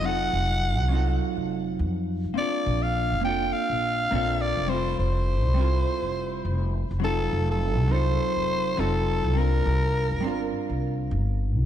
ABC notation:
X:1
M:4/4
L:1/16
Q:"Swing 16ths" 1/4=103
K:F
V:1 name="Soprano saxophone"
_g8 z8 | d3 f3 g2 f6 d2 | c2 c12 z2 | A3 A3 c6 A4 |
B8 z8 |]
V:2 name="Hollow-body jazz guitar"
[_G,C_EFA]6 [G,CEFA]8- [G,CEFA]2 | [B,CDFA]6 [B,CDFA]6 [B,CDFA]4 | [G,CEFA]6 [G,CEFA]8 z2 | [_G,C_EFA]6 [G,CEFA]6 [G,CEFA]4 |
[G,CDFB]6 [G,CDFB]8- [G,CDFB]2 |]
V:3 name="Upright bass" clef=bass
F,,,2 F,,,3 C,,3 z F,,,3 F,,3 F,,, | z2 B,,,3 F,,,3 z B,,,3 B,,,3 F,,,- | F,,,2 F,,,3 C,,3 z F,,,3 F,,,3 F,,,- | F,,,2 F,,,3 C,,3 z F,,,3 F,,,3 C,,- |
C,,2 C,,3 G,,,3 z C,,3 G,,,3 C,, |]